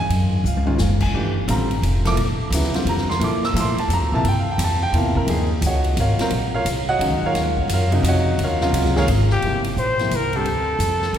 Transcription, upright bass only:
0, 0, Header, 1, 3, 480
1, 0, Start_track
1, 0, Tempo, 345224
1, 140, Time_signature, 3, 2, 24, 8
1, 15546, End_track
2, 0, Start_track
2, 0, Title_t, "Upright bass"
2, 0, Program_c, 0, 32
2, 131, Note_on_c, 0, 42, 76
2, 601, Note_off_c, 0, 42, 0
2, 610, Note_on_c, 0, 37, 88
2, 1081, Note_off_c, 0, 37, 0
2, 1090, Note_on_c, 0, 30, 91
2, 1561, Note_off_c, 0, 30, 0
2, 1570, Note_on_c, 0, 31, 75
2, 2041, Note_off_c, 0, 31, 0
2, 2053, Note_on_c, 0, 33, 105
2, 2522, Note_off_c, 0, 33, 0
2, 2532, Note_on_c, 0, 29, 96
2, 3002, Note_off_c, 0, 29, 0
2, 3009, Note_on_c, 0, 34, 81
2, 3299, Note_off_c, 0, 34, 0
2, 3482, Note_on_c, 0, 38, 102
2, 3957, Note_off_c, 0, 38, 0
2, 3965, Note_on_c, 0, 41, 92
2, 4431, Note_off_c, 0, 41, 0
2, 4439, Note_on_c, 0, 46, 71
2, 4915, Note_off_c, 0, 46, 0
2, 4921, Note_on_c, 0, 45, 103
2, 5215, Note_off_c, 0, 45, 0
2, 5398, Note_on_c, 0, 41, 89
2, 5573, Note_off_c, 0, 41, 0
2, 5573, Note_on_c, 0, 38, 55
2, 5722, Note_off_c, 0, 38, 0
2, 5731, Note_on_c, 0, 34, 75
2, 5884, Note_off_c, 0, 34, 0
2, 5895, Note_on_c, 0, 43, 75
2, 6363, Note_off_c, 0, 43, 0
2, 6369, Note_on_c, 0, 41, 98
2, 6840, Note_off_c, 0, 41, 0
2, 6849, Note_on_c, 0, 40, 91
2, 7319, Note_off_c, 0, 40, 0
2, 7326, Note_on_c, 0, 39, 83
2, 7798, Note_off_c, 0, 39, 0
2, 7807, Note_on_c, 0, 37, 96
2, 8278, Note_off_c, 0, 37, 0
2, 8297, Note_on_c, 0, 32, 90
2, 8582, Note_off_c, 0, 32, 0
2, 8768, Note_on_c, 0, 34, 77
2, 9238, Note_off_c, 0, 34, 0
2, 9248, Note_on_c, 0, 36, 89
2, 9713, Note_off_c, 0, 36, 0
2, 9722, Note_on_c, 0, 37, 101
2, 10014, Note_off_c, 0, 37, 0
2, 10212, Note_on_c, 0, 39, 73
2, 10670, Note_off_c, 0, 39, 0
2, 10678, Note_on_c, 0, 42, 97
2, 11152, Note_off_c, 0, 42, 0
2, 11165, Note_on_c, 0, 41, 96
2, 11636, Note_off_c, 0, 41, 0
2, 11651, Note_on_c, 0, 39, 90
2, 12119, Note_off_c, 0, 39, 0
2, 12130, Note_on_c, 0, 37, 92
2, 12598, Note_off_c, 0, 37, 0
2, 12611, Note_on_c, 0, 32, 103
2, 13079, Note_off_c, 0, 32, 0
2, 13093, Note_on_c, 0, 31, 66
2, 13560, Note_off_c, 0, 31, 0
2, 13578, Note_on_c, 0, 34, 87
2, 14043, Note_off_c, 0, 34, 0
2, 14060, Note_on_c, 0, 36, 79
2, 14508, Note_off_c, 0, 36, 0
2, 14516, Note_on_c, 0, 38, 75
2, 14991, Note_off_c, 0, 38, 0
2, 14999, Note_on_c, 0, 41, 93
2, 15466, Note_off_c, 0, 41, 0
2, 15475, Note_on_c, 0, 40, 83
2, 15546, Note_off_c, 0, 40, 0
2, 15546, End_track
3, 0, Start_track
3, 0, Title_t, "Muted upright bass strokes"
3, 3318, Note_on_c, 9, 29, 40
3, 3457, Note_off_c, 9, 29, 0
3, 5232, Note_on_c, 9, 29, 44
3, 5371, Note_off_c, 9, 29, 0
3, 8592, Note_on_c, 9, 29, 42
3, 8731, Note_off_c, 9, 29, 0
3, 10035, Note_on_c, 9, 29, 51
3, 10174, Note_off_c, 9, 29, 0
3, 15546, End_track
0, 0, End_of_file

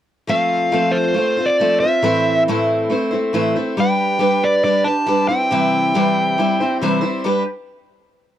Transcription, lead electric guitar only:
0, 0, Header, 1, 2, 480
1, 0, Start_track
1, 0, Tempo, 435414
1, 319, Time_signature, 4, 2, 24, 8
1, 9246, End_track
2, 0, Start_track
2, 0, Title_t, "Lead electric guitar"
2, 0, Program_c, 0, 29
2, 331, Note_on_c, 0, 77, 107
2, 1010, Note_on_c, 0, 72, 77
2, 1068, Note_off_c, 0, 77, 0
2, 1607, Note_on_c, 0, 74, 79
2, 1645, Note_off_c, 0, 72, 0
2, 1980, Note_off_c, 0, 74, 0
2, 1985, Note_on_c, 0, 76, 80
2, 2669, Note_off_c, 0, 76, 0
2, 4192, Note_on_c, 0, 79, 95
2, 4898, Note_on_c, 0, 74, 83
2, 4916, Note_off_c, 0, 79, 0
2, 5104, Note_off_c, 0, 74, 0
2, 5117, Note_on_c, 0, 74, 93
2, 5340, Note_on_c, 0, 81, 103
2, 5365, Note_off_c, 0, 74, 0
2, 5822, Note_off_c, 0, 81, 0
2, 5826, Note_on_c, 0, 79, 90
2, 7466, Note_off_c, 0, 79, 0
2, 9246, End_track
0, 0, End_of_file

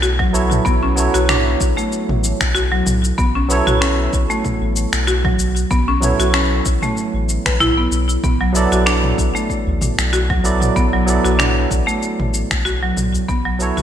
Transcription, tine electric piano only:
0, 0, Header, 1, 2, 480
1, 0, Start_track
1, 0, Tempo, 631579
1, 496, Time_signature, 4, 2, 24, 8
1, 10503, End_track
2, 0, Start_track
2, 0, Title_t, "Tine electric piano"
2, 0, Program_c, 0, 4
2, 0, Note_on_c, 0, 54, 94
2, 0, Note_on_c, 0, 59, 81
2, 0, Note_on_c, 0, 64, 85
2, 0, Note_on_c, 0, 69, 84
2, 0, Note_on_c, 0, 73, 99
2, 220, Note_off_c, 0, 54, 0
2, 223, Note_off_c, 0, 59, 0
2, 227, Note_off_c, 0, 64, 0
2, 231, Note_off_c, 0, 69, 0
2, 235, Note_off_c, 0, 73, 0
2, 247, Note_on_c, 0, 54, 91
2, 252, Note_on_c, 0, 59, 81
2, 255, Note_on_c, 0, 64, 86
2, 260, Note_on_c, 0, 69, 82
2, 262, Note_on_c, 0, 73, 99
2, 705, Note_off_c, 0, 54, 0
2, 708, Note_off_c, 0, 59, 0
2, 709, Note_off_c, 0, 64, 0
2, 711, Note_off_c, 0, 69, 0
2, 713, Note_off_c, 0, 73, 0
2, 724, Note_on_c, 0, 54, 85
2, 734, Note_on_c, 0, 59, 72
2, 740, Note_on_c, 0, 64, 69
2, 751, Note_on_c, 0, 69, 73
2, 757, Note_on_c, 0, 73, 87
2, 2397, Note_off_c, 0, 54, 0
2, 2402, Note_off_c, 0, 59, 0
2, 2405, Note_off_c, 0, 64, 0
2, 2410, Note_off_c, 0, 69, 0
2, 2413, Note_off_c, 0, 73, 0
2, 2648, Note_on_c, 0, 54, 96
2, 2655, Note_on_c, 0, 59, 92
2, 2664, Note_on_c, 0, 64, 90
2, 2669, Note_on_c, 0, 69, 90
2, 2679, Note_on_c, 0, 73, 109
2, 4065, Note_off_c, 0, 54, 0
2, 4069, Note_off_c, 0, 59, 0
2, 4074, Note_off_c, 0, 64, 0
2, 4076, Note_off_c, 0, 69, 0
2, 4081, Note_off_c, 0, 73, 0
2, 4563, Note_on_c, 0, 54, 83
2, 4571, Note_on_c, 0, 59, 76
2, 4578, Note_on_c, 0, 64, 75
2, 4588, Note_on_c, 0, 69, 77
2, 4593, Note_on_c, 0, 73, 91
2, 6236, Note_off_c, 0, 54, 0
2, 6240, Note_off_c, 0, 59, 0
2, 6244, Note_off_c, 0, 64, 0
2, 6249, Note_off_c, 0, 69, 0
2, 6251, Note_off_c, 0, 73, 0
2, 6479, Note_on_c, 0, 54, 94
2, 6487, Note_on_c, 0, 59, 87
2, 6494, Note_on_c, 0, 64, 81
2, 6504, Note_on_c, 0, 69, 84
2, 6510, Note_on_c, 0, 74, 107
2, 7901, Note_off_c, 0, 54, 0
2, 7905, Note_off_c, 0, 59, 0
2, 7908, Note_off_c, 0, 64, 0
2, 7913, Note_off_c, 0, 69, 0
2, 7916, Note_off_c, 0, 74, 0
2, 7930, Note_on_c, 0, 54, 96
2, 7935, Note_on_c, 0, 59, 80
2, 7940, Note_on_c, 0, 64, 77
2, 7941, Note_on_c, 0, 69, 76
2, 7945, Note_on_c, 0, 74, 98
2, 8386, Note_off_c, 0, 54, 0
2, 8389, Note_off_c, 0, 59, 0
2, 8391, Note_off_c, 0, 64, 0
2, 8392, Note_off_c, 0, 69, 0
2, 8394, Note_off_c, 0, 74, 0
2, 8403, Note_on_c, 0, 54, 87
2, 8409, Note_on_c, 0, 59, 77
2, 8417, Note_on_c, 0, 64, 69
2, 8424, Note_on_c, 0, 69, 78
2, 8434, Note_on_c, 0, 74, 86
2, 10076, Note_off_c, 0, 54, 0
2, 10079, Note_off_c, 0, 59, 0
2, 10083, Note_off_c, 0, 64, 0
2, 10086, Note_off_c, 0, 69, 0
2, 10092, Note_off_c, 0, 74, 0
2, 10327, Note_on_c, 0, 54, 92
2, 10334, Note_on_c, 0, 59, 84
2, 10342, Note_on_c, 0, 64, 90
2, 10348, Note_on_c, 0, 69, 85
2, 10358, Note_on_c, 0, 73, 107
2, 10503, Note_off_c, 0, 54, 0
2, 10503, Note_off_c, 0, 59, 0
2, 10503, Note_off_c, 0, 64, 0
2, 10503, Note_off_c, 0, 69, 0
2, 10503, Note_off_c, 0, 73, 0
2, 10503, End_track
0, 0, End_of_file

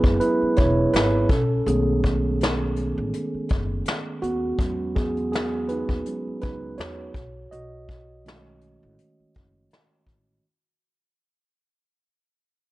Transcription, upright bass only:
0, 0, Header, 1, 3, 480
1, 0, Start_track
1, 0, Tempo, 731707
1, 1086, Time_signature, 4, 2, 24, 8
1, 8338, End_track
2, 0, Start_track
2, 0, Title_t, "Upright bass"
2, 0, Program_c, 0, 32
2, 27, Note_on_c, 0, 30, 91
2, 109, Note_off_c, 0, 30, 0
2, 384, Note_on_c, 0, 28, 104
2, 575, Note_off_c, 0, 28, 0
2, 613, Note_on_c, 0, 32, 103
2, 809, Note_off_c, 0, 32, 0
2, 852, Note_on_c, 0, 35, 93
2, 1048, Note_off_c, 0, 35, 0
2, 1092, Note_on_c, 0, 35, 105
2, 1924, Note_off_c, 0, 35, 0
2, 1953, Note_on_c, 0, 33, 86
2, 2032, Note_off_c, 0, 33, 0
2, 2306, Note_on_c, 0, 30, 104
2, 2496, Note_off_c, 0, 30, 0
2, 2769, Note_on_c, 0, 39, 89
2, 2966, Note_off_c, 0, 39, 0
2, 3011, Note_on_c, 0, 40, 104
2, 3844, Note_off_c, 0, 40, 0
2, 3866, Note_on_c, 0, 39, 93
2, 3948, Note_off_c, 0, 39, 0
2, 4222, Note_on_c, 0, 37, 86
2, 4414, Note_off_c, 0, 37, 0
2, 4455, Note_on_c, 0, 40, 96
2, 4650, Note_off_c, 0, 40, 0
2, 4688, Note_on_c, 0, 35, 97
2, 4886, Note_off_c, 0, 35, 0
2, 4934, Note_on_c, 0, 35, 102
2, 5765, Note_off_c, 0, 35, 0
2, 5791, Note_on_c, 0, 33, 90
2, 5871, Note_off_c, 0, 33, 0
2, 6142, Note_on_c, 0, 30, 88
2, 6334, Note_off_c, 0, 30, 0
2, 6607, Note_on_c, 0, 33, 78
2, 6805, Note_off_c, 0, 33, 0
2, 8338, End_track
3, 0, Start_track
3, 0, Title_t, "Muted upright bass strokes"
3, 275, Note_on_c, 9, 29, 48
3, 340, Note_off_c, 9, 29, 0
3, 2192, Note_on_c, 9, 29, 43
3, 2257, Note_off_c, 9, 29, 0
3, 4115, Note_on_c, 9, 29, 43
3, 4180, Note_off_c, 9, 29, 0
3, 6034, Note_on_c, 9, 29, 41
3, 6100, Note_off_c, 9, 29, 0
3, 8338, End_track
0, 0, End_of_file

